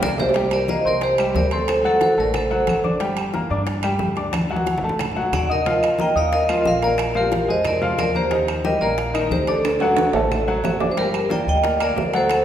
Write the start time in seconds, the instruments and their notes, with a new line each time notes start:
0.02 upright bass C2, grand piano A#3 A#4 D5, vibraphone A#4 D5, low bongo, low conga, claves
0.18 vibraphone G4 C5, low bongo, low conga, low timbale
0.29 low timbale
0.34 grand piano G3 G4 G5, high bongo, high conga, high timbale
0.51 vibraphone A#4 D5, high bongo, high conga, high timbale, claves
0.68 grand piano A#3 A#4 A#5, vibraphone C5 D#5, high bongo, high conga
0.85 upright bass C2, grand piano C4 C5 C6, vibraphone A#4 D5, high conga
1.01 vibraphone G4 C5, high bongo, high conga, high timbale
1.18 grand piano G3 G4 G5, high bongo, high conga, high timbale, claves
1.35 upright bass D2, vibraphone A#4 D5, high bongo, low bongo, high conga, low timbale
1.51 grand piano C4 C5 C6, vibraphone A4 C5, high bongo, high conga, high timbale
1.68 high bongo, high conga, high timbale, claves
1.84 grand piano F#3 F#4 F#5, vibraphone F#4 A4, high bongo, high conga
2.01 vibraphone A4 C5, high bongo, high conga, high timbale
2.17 upright bass A1, grand piano A3 A4 A5, vibraphone A#4 D5, high conga
2.34 vibraphone A4 C5, high bongo, high conga, low conga, high timbale, claves
2.51 grand piano F#3 F#4 F#5, high bongo, high conga
2.67 upright bass G1, high bongo, low bongo, high conga, high timbale, claves
2.84 grand piano D4 D5 D6, high bongo, high conga
3.00 grand piano G3 G4 G5, high bongo, high conga, high timbale
3.17 high bongo, high conga, high timbale, claves
3.34 grand piano A#3 A#4 A#5, high bongo, high conga
3.50 upright bass G2, grand piano D4 D5 D6, high conga
3.67 high bongo, high conga, high timbale
3.83 grand piano G3 G4 G5, high bongo, high conga, high timbale, claves
3.99 upright bass D2, high bongo, low bongo, high conga
4.16 grand piano D4 D5 D6, high bongo, high conga, high timbale
4.33 high bongo, high conga, high timbale, claves
4.49 grand piano F#3 F#4 F#5, high bongo
4.56 high conga
4.67 high bongo, high conga, high timbale
4.78 low conga
4.82 upright bass F#2, grand piano A3 A4 A5
4.89 low conga
4.99 high bongo, low conga, high timbale, claves
5.11 low conga
5.16 grand piano F#3 F#4 F#5, high bongo
5.22 low conga
5.32 upright bass D#2, vibraphone D5 F#5, high bongo, low bongo, low conga, high timbale, claves
5.44 low conga
5.49 grand piano D#4 D#5 D#6, vibraphone A#4 D#5, high bongo
5.54 low conga
5.66 grand piano F3 F4 F5, high bongo, high conga, high timbale
5.82 high bongo, high conga, high timbale, claves
5.99 grand piano A#3 A#4 A#5, vibraphone D#5 G5, high bongo, high conga
6.15 upright bass D#2, grand piano D#4 D#5 D#6, vibraphone D5 F5, high conga
6.32 vibraphone A#4 D#5, high bongo, high conga, high timbale
6.49 grand piano F3 F4 F5, high bongo, high conga, high timbale, claves
6.65 upright bass A#1, vibraphone A#4 F5, high bongo, low bongo, high conga
6.82 grand piano A#3 A#4 A#5, vibraphone A#4 D5, high bongo, high conga, high timbale
6.98 high bongo, high conga, high timbale, claves
7.14 grand piano F3 F4 F5, vibraphone G4 A#4, high bongo, high conga
7.32 high bongo, high conga, high timbale
7.47 upright bass F2, grand piano G#3 G#4 G#5, vibraphone C5 D#5, high conga
7.65 vibraphone A#4 D5, high bongo, high conga, low conga, high timbale, claves
7.82 grand piano F3 F4 F5, high bongo, high conga, low conga
7.97 upright bass D#2, vibraphone A#4 D5, high bongo, low bongo, high conga, high timbale, claves
8.15 grand piano A#3 A#4 A#5, vibraphone G4 C5, high bongo, high conga
8.31 grand piano D#3 D#4 D#5, high bongo, high conga, high timbale
8.48 high bongo, high conga, high timbale, claves
8.65 grand piano G3 G4 G5, vibraphone A#4 D#5, high bongo, high conga
8.80 upright bass A#1, grand piano A#3 A#4 A#5, vibraphone A#4 D5, high conga
8.98 high bongo, high conga, high timbale
9.14 grand piano D#3 D#4 D#5, high bongo, high conga, high timbale, claves
9.31 upright bass D2, vibraphone G4 C5, high bongo, low bongo, high conga
9.47 grand piano D4 D5 D6, vibraphone A4 D5, high bongo, high conga, high timbale
9.64 high bongo, high conga, high timbale, claves
9.80 grand piano F#3 F#4 F#5, high bongo, high conga, high timbale
9.97 high bongo, high conga, high timbale
10.13 upright bass A1, grand piano A3 A4 A5, high conga, low timbale
10.31 high bongo, high conga, low conga, claves
10.48 grand piano F#3 F#4 F#5, high bongo, high conga
10.64 upright bass G1, high bongo, low bongo, high conga, low timbale, claves
10.80 grand piano D4 D5 D6, high bongo, high conga, low timbale
10.92 vibraphone C5
10.97 grand piano G3 G4 G5, vibraphone G4 A#4, high bongo, high conga, high timbale
11.14 high bongo, high conga, high timbale, claves
11.29 grand piano A#3 A#4 D5, vibraphone D5 G5, high bongo, high conga
11.47 upright bass D2, vibraphone D#5 G5, high conga
11.63 grand piano A#3 A#4 D5, high bongo, high conga, high timbale
11.80 grand piano A#3 A#4 D5, vibraphone A#4 D5, high bongo, high conga, high timbale, claves
11.96 upright bass D2, high bongo, low bongo, high conga, low timbale
12.14 grand piano F#3 F#4 F#5, vibraphone A4 C5, high bongo, high conga, high timbale
12.29 high bongo, high conga, high timbale, claves